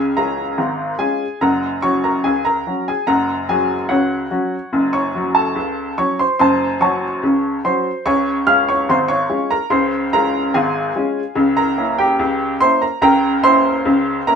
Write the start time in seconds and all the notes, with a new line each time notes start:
Already playing: C#2 C#3 G#4 F5 G#5
0.17 G#3 C#4 F4 A#4 A#5
0.58 G#1 G#2
0.99 G#3 C#4 F4 G#4 G#5
1.41 F#1 F#2 A#4 F#5 A#5
1.82 F#3 C#4 F#4 C#5 C#6
2.04 A#4 A#5
2.24 C#2 C#3 G#4 G#5
2.45 A#4 A#5
2.67 F#3 C#4 F#4
2.88 G#4 G#5
3.07 F#1 F#2 A#4 F#5 A#5
3.49 F#3 C#4 F#4 G#4 G#5
3.89 C#2 C#3 F#4 C#5 F#5
4.31 F#3 C#4 F#4
4.73 F#1 F#2
4.93 C#5 C#6
5.15 F#3 C#4 F#4
5.35 A4 A5
5.55 C#2 C#3
5.98 F#3 C#4 F#4 C#5 C#6
6.19 C5 C6
6.39 F#1 F#2 C5 A5 C6
6.80 F#3 C#4 F#4 C#5 A5 C#6
7.23 C#2 C#3
7.64 F#3 C#4 F#4 C5 C6
8.06 C#2 C#3 C#5 G#5 C#6
8.47 G#3 C#4 F4 F5 F6
8.69 C#5 C#6
8.89 G#1 G#2 C5 C6
9.08 C#5 C#6
9.30 G#3 C#4 F4
9.51 A#4 A#5
9.70 C#2 C#3 C5 C6
10.13 G#3 C#4 F4 A#4 A#5
10.54 G#1 G#2 G#4 F5 G#5
10.96 G#3 C#4 F4
11.35 C#2 C#3
11.57 A#4 A#5
11.78 A#3 C#4 E4
11.98 G4 G5
12.19 C#2 C#3
12.61 A#3 C#4 E4 C5 C6
12.82 A#4 A#5
13.02 C#2 C#3 A#4 G5 A#5
13.43 A#3 C#4 E4 C5 C6
13.85 C#2 C#3
14.27 A#3 C#4 E4 A#4 A#5